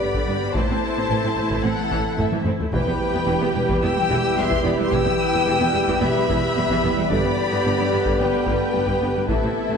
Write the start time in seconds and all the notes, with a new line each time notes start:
Already playing: D3 G3 B3 G4 B4 D5 B5
0.01 G1 G2 G3
0.14 G2 D3, taiko
0.27 G1 G2 B3
0.42 G2 G3
0.54 A1 A2 E3 A3 C4 E4 A4 C5 A5, taiko
0.69 A2 C4
0.96 A2 C4
1.09 A1 A2 E3
1.23 A2 C4
1.36 A1 A2 A3
1.50 A2 E3, taiko
1.63 A1 A2 C4 A4 F#5
1.77 A2 A3
1.90 A1 A2 E3, taiko
2.18 A1 A2 A3 A4 E5, taiko low-mid
2.32 A2 E3, taiko high
2.46 A1 A2 C4, taiko low-mid
2.60 A2 A3, taiko low
2.72 E1 E2 E3 G3 B3 E4 G4 B4 G5, taiko
2.87 E2 B3
3.14 E2 B3
3.27 E1 E2 E3
3.41 E2 B3
3.55 E1 E2 G3
3.69 E2 E3, taiko
3.82 E1 E2 B3 G5 E6
3.96 E2 G3
4.09 E1 E2 E3, taiko
4.37 E1 E2 G3 E5 C6
4.50 E2 E3, taiko
4.64 E1 E2 B3 D5 B5
4.78 E2 G3 E5 C6
4.92 E1 E2 E3 G5 E6, taiko
5.06 E2 B3
5.33 E2 B3
5.46 E1 E2 E3
5.60 E2 B3
5.74 E1 E2 G3
5.88 E2 E3, taiko
6.01 E1 E2 B3 E5 B5
6.16 E2 G3
6.29 E1 E2 E3, taiko
6.56 E1 E2 G3
6.70 E2 E3, taiko
6.84 E1 E2 B3
6.97 E2 G3
7.10 G1 G2 D3 G3 B3 G4 B4 D5 B5, taiko
7.24 G2 B3
7.52 G2 B3
7.64 G1 G2 D3
7.77 G2 B3
7.92 G1 G2 G3
8.06 G2 D3, taiko
8.19 G1 G2 B3 B4 G5
8.33 G2 G3
8.46 G1 G2 D3, taiko
8.73 G1 G2 G3
8.86 G2 D3, taiko
9.01 G1 G2 B3
9.15 G2 G3
9.28 A1 A2 E3 A3 C4 E4 A4 E5, taiko
9.42 A2 C4, taiko mid
9.69 A2 C4, taiko mid